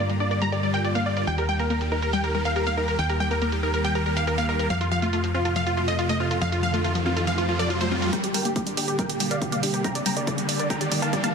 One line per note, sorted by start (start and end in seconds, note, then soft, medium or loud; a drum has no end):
0.00 1.25 G2 medium
0.09 0.16 G3 medium
0.09 closed hi-hat medium
0.20 0.24 D4 medium
0.20 0.29 D5 medium
0.31 0.37 A#4 medium
0.31 0.39 D5 medium
0.31 closed hi-hat medium
0.42 0.48 G3 medium
0.42 0.50 A#5 medium
0.42 closed hi-hat medium
0.52 0.59 G4 medium
0.52 0.61 D5 medium
0.52 closed hi-hat medium
0.63 0.69 G3 medium
0.63 0.72 D5 medium
0.74 0.78 A#4 medium
0.74 0.82 G5 medium
0.74 closed hi-hat medium
0.84 0.94 G4 medium
0.84 0.93 D5 medium
0.84 closed hi-hat medium
0.95 1.05 A#3 medium
0.95 1.04 F5 medium
0.95 closed hi-hat medium
1.06 1.10 D4 medium
1.06 1.14 D5 medium
1.17 1.23 A#4 medium
1.17 1.25 D5 medium
1.17 closed hi-hat medium
1.27 2.97 D#2 medium
1.27 1.37 G3 medium
1.27 1.36 G5 medium
1.27 closed hi-hat medium
1.38 1.44 G4 medium
1.38 1.46 A#4 medium
1.38 closed hi-hat medium
1.49 1.55 G3 medium
1.49 1.57 G5 medium
1.59 1.66 A#3 medium
1.59 1.68 A#4 medium
1.59 closed hi-hat medium
1.70 1.80 A#3 medium
1.70 1.79 A#4 medium
1.70 closed hi-hat medium
1.81 1.87 G3 medium
1.81 closed hi-hat medium
1.92 1.95 D#4 medium
1.92 2.00 A#4 medium
2.02 2.09 A#4 medium
2.02 2.11 A#4 medium
2.02 closed hi-hat medium
2.13 2.20 G3 medium
2.13 2.22 G5 medium
2.13 closed hi-hat medium
2.24 2.30 G4 medium
2.24 2.32 A#4 medium
2.24 closed hi-hat medium
2.35 2.41 G3 medium
2.35 2.43 A#4 medium
2.45 2.49 A#4 medium
2.45 2.54 F5 medium
2.45 closed hi-hat medium
2.56 2.66 G4 medium
2.56 2.64 A#4 medium
2.56 closed hi-hat medium
2.67 2.76 A#3 medium
2.67 2.75 F5 medium
2.67 closed hi-hat medium
2.77 2.81 D#4 medium
2.77 2.86 A#4 medium
2.88 2.96 A#4 medium
2.88 2.95 A#4 medium
2.88 closed hi-hat medium
2.99 4.68 D#2 medium
2.99 3.08 G3 medium
2.99 3.07 G5 loud
2.99 closed hi-hat medium
3.09 3.16 G4 medium
3.09 3.18 A#4 medium
3.09 closed hi-hat medium
3.20 3.27 G3 medium
3.20 3.29 G5 medium
3.31 3.37 A#3 medium
3.31 3.39 A#4 medium
3.31 closed hi-hat medium
3.42 3.51 A#3 medium
3.42 3.50 A#4 medium
3.42 closed hi-hat medium
3.52 3.59 G3 medium
3.52 closed hi-hat medium
3.63 3.67 D#4 medium
3.63 3.71 A#4 medium
3.74 3.80 A#4 medium
3.74 3.82 A#4 medium
3.74 closed hi-hat medium
3.84 3.91 G3 medium
3.84 3.93 G5 medium
3.84 closed hi-hat medium
3.95 4.02 G4 medium
3.95 4.04 A#4 medium
3.95 closed hi-hat medium
4.06 4.12 G3 medium
4.06 4.14 A#4 medium
4.17 4.20 A#4 medium
4.17 4.25 F5 medium
4.17 closed hi-hat medium
4.27 4.37 G4 medium
4.27 4.36 A#4 medium
4.27 closed hi-hat medium
4.38 4.48 A#3 medium
4.38 4.46 F5 medium
4.38 closed hi-hat medium
4.49 4.53 D#4 medium
4.49 4.57 A#4 medium
4.59 4.68 A#4 medium
4.59 4.66 A#4 medium
4.59 closed hi-hat medium
4.70 6.39 F2 medium
4.70 4.80 F3 medium
4.70 4.79 F5 medium
4.70 closed hi-hat medium
4.70 riser medium
4.81 4.89 F4 medium
4.81 4.87 F4 medium
4.81 closed hi-hat medium
4.92 4.98 F3 medium
4.92 5.00 F5 medium
5.02 5.09 A3 medium
5.02 5.11 F4 medium
5.02 closed hi-hat medium
5.13 5.23 A3 medium
5.13 5.21 F4 medium
5.13 closed hi-hat medium
5.24 5.30 F3 medium
5.24 closed hi-hat medium
5.34 5.38 C4 medium
5.34 5.43 F4 medium
5.45 5.54 F4 medium
5.45 5.52 A4 medium
5.45 closed hi-hat medium
5.56 5.62 F3 medium
5.56 5.64 F5 medium
5.56 closed hi-hat medium
5.67 5.73 F4 medium
5.67 5.75 F4 medium
5.67 closed hi-hat medium
5.77 5.84 F3 medium
5.77 5.86 F4 medium
5.88 5.92 A4 medium
5.88 5.96 D#5 medium
5.88 closed hi-hat medium
5.99 6.08 F4 medium
5.99 6.07 F4 medium
5.99 closed hi-hat medium
6.09 6.19 A3 medium
6.09 6.18 D#5 medium
6.09 closed hi-hat medium
6.20 6.24 C4 medium
6.20 6.29 F4 medium
6.31 6.39 F4 medium
6.31 6.37 A4 medium
6.31 closed hi-hat medium
6.41 8.11 F2 medium
6.41 6.51 F3 medium
6.41 6.50 F5 loud
6.41 closed hi-hat medium
6.52 6.59 F4 medium
6.52 6.61 F4 medium
6.52 closed hi-hat medium
6.63 6.69 F3 medium
6.63 6.71 F5 loud
6.74 6.80 A3 medium
6.74 6.82 F4 medium
6.74 closed hi-hat medium
6.84 6.94 A3 medium
6.84 6.93 F4 medium
6.84 closed hi-hat medium
6.95 7.02 F3 medium
6.95 closed hi-hat medium
7.06 7.10 C4 medium
7.06 7.14 F4 medium
7.16 7.25 F4 medium
7.16 7.23 A4 medium
7.16 closed hi-hat medium
7.27 7.34 F3 medium
7.27 7.36 F5 medium
7.27 closed hi-hat medium
7.38 7.44 F4 medium
7.38 7.46 F4 medium
7.38 closed hi-hat medium
7.49 7.55 F3 medium
7.49 7.57 F4 medium
7.59 7.63 A4 medium
7.59 7.68 D5 medium
7.59 closed hi-hat medium
7.70 7.78 F4 medium
7.70 7.80 F4 medium
7.70 closed hi-hat medium
7.81 7.91 A3 medium
7.81 7.89 C5 medium
7.81 closed hi-hat medium
7.91 7.95 C4 medium
7.91 8.00 F4 medium
8.02 8.11 F4 medium
8.02 8.09 A4 medium
8.02 closed hi-hat medium
8.13 8.23 G3 medium
8.13 8.21 A#4 medium
8.13 8.21 G5 medium
8.13 kick loud
8.13 closed hi-hat medium
8.13 riser medium
8.24 8.32 G4 medium
8.24 8.30 G4 medium
8.24 closed hi-hat medium
8.34 8.41 G3 medium
8.34 8.43 A#4 medium
8.34 8.43 G5 medium
8.34 open hi-hat loud
8.45 8.52 A#3 medium
8.45 8.53 G4 medium
8.45 closed hi-hat medium
8.56 8.66 A#3 medium
8.56 8.64 G4 medium
8.56 kick loud
8.56 closed hi-hat medium
8.67 8.73 G3 medium
8.67 closed hi-hat medium
8.77 8.81 D4 medium
8.77 8.86 G4 medium
8.77 open hi-hat loud
8.88 8.96 G4 medium
8.88 8.94 A#4 medium
8.88 closed hi-hat medium
8.99 9.05 G3 medium
8.99 9.07 A#4 medium
8.99 9.07 G5 medium
8.99 kick loud
8.99 closed hi-hat medium
9.09 9.18 G4 medium
9.09 9.16 G4 medium
9.09 closed hi-hat medium
9.20 9.27 G3 medium
9.20 9.29 G4 medium
9.20 open hi-hat loud
9.31 9.35 A#4 medium
9.31 9.39 D5 medium
9.31 9.39 F5 medium
9.31 closed hi-hat medium
9.41 9.50 G4 medium
9.41 9.51 G4 medium
9.41 kick loud
9.41 closed hi-hat medium
9.52 9.62 A#3 medium
9.52 9.61 D5 medium
9.52 9.61 F5 medium
9.52 closed hi-hat medium
9.63 9.67 D4 medium
9.63 9.71 G4 medium
9.63 open hi-hat loud
9.74 9.82 G4 medium
9.74 9.80 A#4 medium
9.74 closed hi-hat medium
9.84 9.94 G3 medium
9.84 9.93 G5 medium
9.84 9.93 A#5 medium
9.84 kick loud
9.84 closed hi-hat medium
9.95 10.02 G4 medium
9.95 10.04 D5 medium
9.95 closed hi-hat medium
10.06 10.12 G3 medium
10.06 10.14 G5 medium
10.06 10.14 A#5 medium
10.06 open hi-hat loud
10.17 10.23 A#3 medium
10.17 10.25 D5 medium
10.17 closed hi-hat medium
10.27 10.37 A#3 medium
10.27 10.36 D5 medium
10.27 kick loud
10.27 closed hi-hat medium
10.38 10.45 G3 medium
10.38 closed hi-hat medium
10.49 10.53 D4 medium
10.49 10.57 D5 medium
10.49 open hi-hat loud
10.59 10.66 A#4 medium
10.59 10.68 D5 medium
10.59 closed hi-hat medium
10.70 10.77 G3 medium
10.70 10.79 G5 medium
10.70 10.79 A#5 medium
10.70 kick loud
10.70 closed hi-hat medium
10.81 10.87 G4 medium
10.81 10.89 D5 medium
10.81 closed hi-hat medium
10.91 10.98 G3 medium
10.91 11.00 D5 medium
10.91 kick medium
10.91 open hi-hat loud
11.02 11.06 A#4 medium
11.02 11.11 F5 medium
11.02 11.11 A5 medium
11.02 closed hi-hat medium
11.13 11.23 G4 medium
11.13 11.21 D5 medium
11.13 kick loud
11.13 closed hi-hat medium
11.24 11.33 A#3 medium
11.24 11.32 F5 medium
11.24 11.32 A5 medium
11.24 closed hi-hat medium